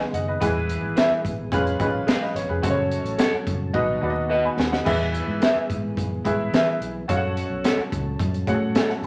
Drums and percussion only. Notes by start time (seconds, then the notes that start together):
0.01 snare
0.14 closed hi-hat
0.42 kick, closed hi-hat
0.69 closed hi-hat
0.97 snare, closed hi-hat
1.25 kick, closed hi-hat
1.52 kick, closed hi-hat
1.67 closed hi-hat
1.80 kick, closed hi-hat
2.08 snare, closed hi-hat
2.23 snare
2.36 snare, closed hi-hat
2.63 kick, closed hi-hat
2.92 closed hi-hat
3.06 closed hi-hat
3.19 snare, closed hi-hat
3.47 kick, closed hi-hat
3.74 kick
4.59 snare
4.73 snare
4.86 kick, crash
5.14 closed hi-hat
5.42 snare, closed hi-hat
5.70 kick, closed hi-hat
5.97 kick, closed hi-hat
6.25 kick, closed hi-hat
6.54 snare, closed hi-hat
6.82 closed hi-hat
7.09 kick, closed hi-hat
7.37 closed hi-hat
7.64 snare, closed hi-hat
7.92 kick, closed hi-hat
8.19 kick, closed hi-hat
8.34 closed hi-hat
8.47 kick, closed hi-hat
8.75 snare, closed hi-hat
8.90 snare
9.03 open hi-hat